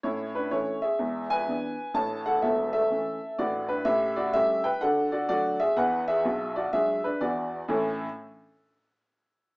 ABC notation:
X:1
M:4/4
L:1/8
Q:"Swing" 1/4=125
K:A
V:1 name="Upright piano"
[Ec] [DB] [Ec] [Ge]2 [Bg]3 | [ca] [Af] [Ae] [Ae]3 [Fd] [DB] | [=Ge] [Fd] [Ge] [B=g] [Af] [Fd] [Fd] [^Ge] | [Bf] [Ge]2 [Fd] [Ge] [DB] [Fd]2 |
[A,,E,CEAc] z6 z |]
V:2 name="Upright piano" clef=bass
[A,,C]2 [E,A,C]2 [E,,G,]2 [E,B,D]2 | [A,,,A,,]2 [E,,,E,,]2 [E,A,C]2 [A,,,A,,]2 | [A,,C]2 [=G,A,C]2 [D,F]2 [F,A,D]2 | [E,,E,]2 [B,,,B,,]2 [F,G,D]2 [E,,E,]2 |
z8 |]